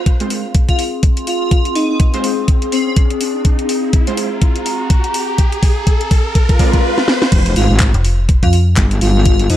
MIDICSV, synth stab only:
0, 0, Header, 1, 2, 480
1, 0, Start_track
1, 0, Tempo, 483871
1, 1502, Time_signature, 4, 2, 24, 8
1, 9490, End_track
2, 0, Start_track
2, 0, Title_t, "Synth stab"
2, 0, Program_c, 0, 62
2, 200, Note_on_c, 0, 56, 74
2, 200, Note_on_c, 0, 60, 67
2, 200, Note_on_c, 0, 65, 71
2, 200, Note_on_c, 0, 72, 87
2, 309, Note_off_c, 0, 56, 0
2, 309, Note_off_c, 0, 60, 0
2, 309, Note_off_c, 0, 65, 0
2, 309, Note_off_c, 0, 72, 0
2, 2120, Note_on_c, 0, 56, 98
2, 2121, Note_on_c, 0, 60, 87
2, 2121, Note_on_c, 0, 65, 86
2, 2121, Note_on_c, 0, 72, 107
2, 2229, Note_off_c, 0, 56, 0
2, 2229, Note_off_c, 0, 60, 0
2, 2229, Note_off_c, 0, 65, 0
2, 2229, Note_off_c, 0, 72, 0
2, 4040, Note_on_c, 0, 56, 78
2, 4040, Note_on_c, 0, 60, 70
2, 4040, Note_on_c, 0, 65, 72
2, 4040, Note_on_c, 0, 72, 84
2, 4149, Note_off_c, 0, 56, 0
2, 4149, Note_off_c, 0, 60, 0
2, 4149, Note_off_c, 0, 65, 0
2, 4149, Note_off_c, 0, 72, 0
2, 6541, Note_on_c, 0, 56, 82
2, 6541, Note_on_c, 0, 60, 72
2, 6541, Note_on_c, 0, 65, 75
2, 6541, Note_on_c, 0, 74, 85
2, 6686, Note_off_c, 0, 56, 0
2, 6686, Note_off_c, 0, 60, 0
2, 6686, Note_off_c, 0, 65, 0
2, 6686, Note_off_c, 0, 74, 0
2, 9490, End_track
0, 0, End_of_file